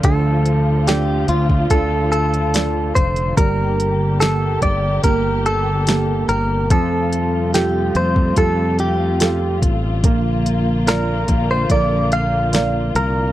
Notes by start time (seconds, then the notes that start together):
Already playing: D3 F3
0.03 D2 D3 F4 A4, kick, closed hi-hat
0.46 closed hi-hat
0.87 D4 F4 G4 A4, snare, closed hi-hat
1.28 D2 F4, closed hi-hat
1.50 kick
1.70 D2 D4 F4 A4, kick, closed hi-hat
2.12 A4, closed hi-hat
2.34 closed hi-hat
2.54 D4 F4 A4, snare, closed hi-hat
2.95 F1 C5, kick, closed hi-hat
3.16 closed hi-hat
3.37 G1 G3 A#3 G4 A#4, kick, closed hi-hat
3.80 closed hi-hat
4.20 A#3 G4 A4, snare, closed hi-hat
4.62 G1 D5, kick, closed hi-hat
5.04 G1 A#3 G4 A#4, kick, closed hi-hat
5.46 A4, closed hi-hat
5.87 A#3 G4, snare, closed hi-hat
6.29 G1 A#4, closed hi-hat
6.70 F2 C3 F3 G3 A3 F4 A4, kick, closed hi-hat
7.13 closed hi-hat
7.54 F4 G4 A4, snare, closed hi-hat
7.95 F2 C5, closed hi-hat
8.16 kick
8.36 F2 F4 G4 A4, kick, closed hi-hat
8.79 G4, closed hi-hat
9.20 F4 G4 A4, snare, closed hi-hat
9.62 A1, kick, closed hi-hat
10.03 A#1 D3 F3 A#3, kick, closed hi-hat
10.46 closed hi-hat
10.87 F4 A#4 D5, snare, closed hi-hat
11.28 A#1, kick, closed hi-hat
11.51 C5
11.70 A#1 F4 A#4 D5, kick, closed hi-hat
12.12 F5, closed hi-hat
12.53 F4 A#4 D5, snare, closed hi-hat
12.95 C2 A#4, closed hi-hat